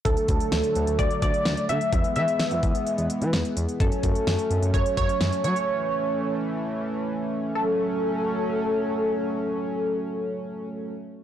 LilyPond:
<<
  \new Staff \with { instrumentName = "Analog polysynth" } { \time 4/4 \key fis \minor \tempo 4 = 128 a'2 d''8 d''4 e''8~ | e''8 e''2 r4. | a'2 cis''8 cis''4 cis''8~ | cis''4. r2 r8 |
a'1~ | a'1 | }
  \new Staff \with { instrumentName = "Analog synth pad" } { \clef bass \time 4/4 \key fis \minor << { <fis a>1 | <gis b>1 | <a cis'>1~ | <a cis'>1 |
<fis a cis'>1~ | <fis a cis'>1 | } \\ { d1 | e1 | fis1 | e1 |
r1 | r1 | } >> }
  \new Staff \with { instrumentName = "Analog synth bass" } { \clef bass \time 4/4 \key fis \minor d,16 r16 d,16 r16 d,16 r16 d,16 d,16 d,16 r16 d,16 r16 d,16 r16 d16 r16 | e,16 r16 e16 r8 e,16 e,16 r8 e,16 r16 e16 e,16 r16 e,16 r16 | fis,16 r16 fis,16 r16 fis,16 r16 fis,16 fis,16 fis,16 r16 fis,16 r16 fis,16 r16 fis16 r16 | r1 |
r1 | r1 | }
  \new DrumStaff \with { instrumentName = "Drums" } \drummode { \time 4/4 <hh bd>16 hh16 <hh bd>16 hh16 <hh sn>16 hh16 hh16 hh16 <hh bd>16 hh16 <hh bd>16 hh16 <hh sn>16 hh16 hh16 hh16 | <hh bd>16 hh16 hh16 hh16 <hh sn>16 hh16 <hh bd>16 hh16 hh16 hh16 hh16 hh16 <hh sn>16 hh16 hh16 hh16 | <hh bd>16 hh16 <hh bd>16 hh16 <hh sn>16 hh16 hh16 hh16 <hh bd>16 hh16 <hh bd>16 hh16 <hh sn>16 hh16 hh16 hh16 | r4 r4 r4 r4 |
r4 r4 r4 r4 | r4 r4 r4 r4 | }
>>